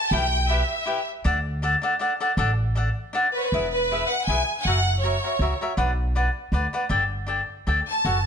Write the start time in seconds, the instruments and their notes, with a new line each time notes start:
Already playing: violin section A5
0.11 upright bass B1, cavaquinho E4 G4 B4 G5, violin section G5
0.49 cavaquinho E4 G4 B4 G5, violin section E5
0.86 cavaquinho E4 G4 B4 G5
1.24 upright bass D2, cavaquinho D4 A4 D5 F#5
1.62 cavaquinho D4 A4 D5 F#5
1.82 cavaquinho D4 A4 D5 F#5
1.99 cavaquinho D4 A4 D5 F#5
2.20 cavaquinho D4 A4 D5 F#5
2.37 upright bass A1, cavaquinho D4 A4 D5 F#5
2.75 cavaquinho D4 A4 D5 F#5
3.13 cavaquinho D4 A4 D5 F#5
3.33 violin section B4
3.41 violin section C#5
3.46 violin section B4
3.52 upright bass E1, cavaquinho E4 G#4 B4 E5
3.70 violin section B4
3.91 cavaquinho E4 G#4 B4 E5
4.07 violin section F#5
4.24 upright bass B1, violin section G#5
4.29 cavaquinho E4 G#4 B4 E5
4.60 violin section F#5 G#5
4.65 upright bass F#1, cavaquinho F#4 A#4 C#5 E5
5.01 cavaquinho F#4 A#4, violin section C#5
5.05 cavaquinho C#5 E5
5.24 cavaquinho F#4 A#4 C#5 E5
5.39 upright bass C#2, cavaquinho F#4 A#4 C#5 E5
5.61 cavaquinho F#4 A#4 C#5 E5
5.77 upright bass B1, cavaquinho D4 B4 D5 F#5
6.15 cavaquinho D4 B4 D5 F#5
6.52 upright bass D2, cavaquinho D4 B4 D5 F#5
6.73 cavaquinho D4 B4 D5 F#5
6.89 upright bass G1, cavaquinho D4 A4 D5 G5
7.27 cavaquinho D4 A4 D5 G5
7.67 upright bass D2, cavaquinho D4 A4 D5 G5
7.89 violin section A5
8.05 upright bass F#1, cavaquinho F#4 A4 C#5 F#5